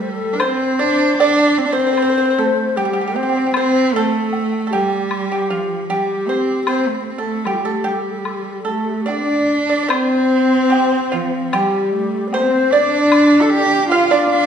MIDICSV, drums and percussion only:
0, 0, Header, 1, 2, 480
1, 0, Start_track
1, 0, Tempo, 784314
1, 247, Time_signature, 4, 2, 24, 8
1, 4564, Tempo, 815217
1, 6964, Tempo, 791557
1, 8739, End_track
2, 0, Start_track
2, 0, Title_t, "Drums"
2, 243, Note_on_c, 9, 76, 56
2, 305, Note_off_c, 9, 76, 0
2, 731, Note_on_c, 9, 77, 42
2, 792, Note_off_c, 9, 77, 0
2, 1208, Note_on_c, 9, 76, 44
2, 1269, Note_off_c, 9, 76, 0
2, 2166, Note_on_c, 9, 76, 63
2, 2227, Note_off_c, 9, 76, 0
2, 2648, Note_on_c, 9, 77, 43
2, 2709, Note_off_c, 9, 77, 0
2, 3126, Note_on_c, 9, 76, 48
2, 3187, Note_off_c, 9, 76, 0
2, 4081, Note_on_c, 9, 76, 59
2, 4142, Note_off_c, 9, 76, 0
2, 4561, Note_on_c, 9, 76, 36
2, 4620, Note_off_c, 9, 76, 0
2, 5032, Note_on_c, 9, 76, 44
2, 5091, Note_off_c, 9, 76, 0
2, 5518, Note_on_c, 9, 77, 35
2, 5577, Note_off_c, 9, 77, 0
2, 6003, Note_on_c, 9, 76, 67
2, 6062, Note_off_c, 9, 76, 0
2, 6484, Note_on_c, 9, 77, 52
2, 6543, Note_off_c, 9, 77, 0
2, 6962, Note_on_c, 9, 76, 57
2, 7023, Note_off_c, 9, 76, 0
2, 7445, Note_on_c, 9, 77, 46
2, 7505, Note_off_c, 9, 77, 0
2, 7925, Note_on_c, 9, 76, 66
2, 7985, Note_off_c, 9, 76, 0
2, 8406, Note_on_c, 9, 77, 46
2, 8466, Note_off_c, 9, 77, 0
2, 8739, End_track
0, 0, End_of_file